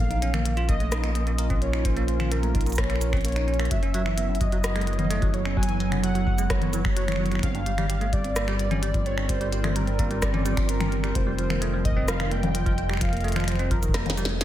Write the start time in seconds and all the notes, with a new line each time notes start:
0.00 A#1 A#3 F5
0.10 D#4, closed hi-hat
0.22 C#4, closed hi-hat
0.28 C#4
0.34 A#3, finger snap, closed hi-hat, high tom
0.45 A#3, closed hi-hat
0.57 F4, closed hi-hat
0.69 A#3 F4 D#5, kick, closed hi-hat
0.80 A3, closed hi-hat
0.92 D#4 A#4, cross-stick, closed hi-hat, cabasa
1.04 A#2, finger snap, closed hi-hat
1.15 A#3, closed hi-hat
1.27 A#3, closed hi-hat
1.38 A#4, closed hi-hat
1.50 C4, kick, closed hi-hat
1.62 A#3 C#5, closed hi-hat
1.73 D#4, finger snap
1.85 C#4 C5, kick, closed hi-hat
1.97 A#3, closed hi-hat
2.08 A#3, closed hi-hat
2.20 F4, finger snap, closed hi-hat, high tom
2.31 A#3 A#4, closed hi-hat
2.43 A3, closed hi-hat
2.55 D#4, kick, closed hi-hat
2.61 closed hi-hat
2.66 A#2, closed hi-hat, cabasa
2.69 closed hi-hat, cabasa
2.72 cabasa
2.75 A#3 C#5, finger snap, kick, cross-stick, closed hi-hat, cabasa
2.84 finger snap
2.90 A#3, finger snap, closed hi-hat
2.96 finger snap
3.01 A#4, closed hi-hat, cabasa
3.13 C4, finger snap, kick, closed hi-hat
3.17 closed hi-hat
3.21 A#3 C#5, closed hi-hat
3.25 closed hi-hat
3.28 closed hi-hat
3.32 D#4, finger snap, closed hi-hat
3.36 closed hi-hat
3.48 C#4, closed hi-hat
3.54 closed hi-hat
3.59 A#3, finger snap, closed hi-hat
3.65 closed hi-hat
3.71 F#1 F#3 E5, kick, closed hi-hat
3.83 C#4 E4, closed hi-hat
3.94 F#3, closed hi-hat
4.01 B3
4.06 E3, finger snap
4.18 B3, closed hi-hat
4.29 F#2
4.35 closed hi-hat
4.41 F#3 D#5, kick, closed hi-hat
4.52 F#3, closed hi-hat
4.64 F#4, cross-stick, closed hi-hat, cabasa
4.76 G#3, finger snap, closed hi-hat
4.81 closed hi-hat
4.86 F#3 A4, closed hi-hat
4.93 closed hi-hat
4.99 B3, closed hi-hat, high tom
5.05 high tom
5.10 A3, closed hi-hat, high tom
5.16 high tom
5.22 F#3, kick, closed hi-hat
5.34 F#3 C#5, closed hi-hat
5.45 C#4, finger snap
5.57 F#3 G#5, kick
5.63 closed hi-hat
5.69 E3, closed hi-hat
5.80 B3, closed hi-hat
5.92 F#2, finger snap, closed hi-hat, high tom
6.03 F#3 F#5, closed hi-hat
6.15 F#3, closed hi-hat
6.27 F#4, kick
6.38 G#3, closed hi-hat, cabasa
6.50 F#3 C#5, finger snap, kick, cross-stick, closed hi-hat
6.62 B3, closed hi-hat, high tom
6.73 E3, closed hi-hat, cabasa
6.85 F#3, finger snap, kick
6.97 F#3 C#5, closed hi-hat
7.08 E3, finger snap, closed hi-hat, high tom
7.12 finger snap
7.16 F#3, finger snap, high tom
7.24 closed hi-hat, high tom
7.31 F#3, finger snap, closed hi-hat
7.35 finger snap
7.39 G1 G3 C4 F5, finger snap, kick, closed hi-hat
7.55 G2, closed hi-hat
7.66 G3, closed hi-hat
7.78 G3, finger snap, closed hi-hat, high tom
7.84 C4
7.90 G4, closed hi-hat
8.01 A3 D5, closed hi-hat
8.12 G3 F4 D5, kick, closed hi-hat
8.24 C4, closed hi-hat
8.36 A#3, cross-stick, closed hi-hat, cabasa
8.48 G3, finger snap, closed hi-hat
8.59 G3, closed hi-hat
8.69 C#4 A#4, closed hi-hat, high tom
8.82 G3, closed hi-hat
8.94 F3, kick, closed hi-hat
9.06 C4 C#5, closed hi-hat
9.17 G2, finger snap
9.29 G3 C5, kick, closed hi-hat
9.41 G3, closed hi-hat
9.52 G4, closed hi-hat
9.64 A3, finger snap, closed hi-hat, high tom
9.76 G3 A#4, closed hi-hat
9.87 C4, closed hi-hat
9.99 A#3, kick, closed hi-hat
10.11 G3, closed hi-hat
10.22 G3 D5, finger snap, kick, cross-stick, closed hi-hat, cabasa
10.34 C#4, closed hi-hat, high tom
10.45 G3, closed hi-hat, cabasa
10.57 F3, finger snap, kick, closed hi-hat
10.69 C4 A#4, closed hi-hat
10.80 G2, finger snap, closed hi-hat, high tom
10.92 G3, closed hi-hat
11.03 G3, finger snap, closed hi-hat
11.15 F1 F4 C5, kick, closed hi-hat
11.27 G3
11.38 F3, closed hi-hat
11.50 A#3, finger snap, closed hi-hat, high tom
11.58 A3 D#5, closed hi-hat
11.73 F3
11.85 F3 D#5, kick, closed hi-hat
11.91 kick
11.97 C4, kick
12.02 kick
12.08 F3 F5, cross-stick, closed hi-hat, cabasa
12.20 D#3, finger snap, closed hi-hat
12.31 A#3 G5, closed hi-hat
12.43 F2, closed hi-hat, high tom
12.55 F3, closed hi-hat
12.66 F3, kick, closed hi-hat
12.78 F4, closed hi-hat
12.89 G3, finger snap
12.93 finger snap
12.97 F3, finger snap
13.01 F5, finger snap, kick, closed hi-hat
13.05 finger snap
13.09 A#3, finger snap, closed hi-hat
13.17 closed hi-hat
13.21 A3, closed hi-hat
13.24 closed hi-hat
13.28 closed hi-hat
13.32 F3, finger snap, closed hi-hat
13.36 finger snap, closed hi-hat, high tom
13.40 finger snap, closed hi-hat
13.44 F3, finger snap, closed hi-hat
13.48 C5, finger snap, closed hi-hat
13.52 finger snap, closed hi-hat
13.55 C4, closed hi-hat
13.59 closed hi-hat
13.71 F3 A#4, kick, closed hi-hat
13.83 D#3, closed hi-hat, cabasa
13.88 kick
13.94 A#3, cross-stick, snare, closed hi-hat
14.06 F2, snare, closed hi-hat, high tom
14.18 G3, closed hi-hat, cabasa
14.25 A3, snare, closed hi-hat
14.41 A3, snare, closed hi-hat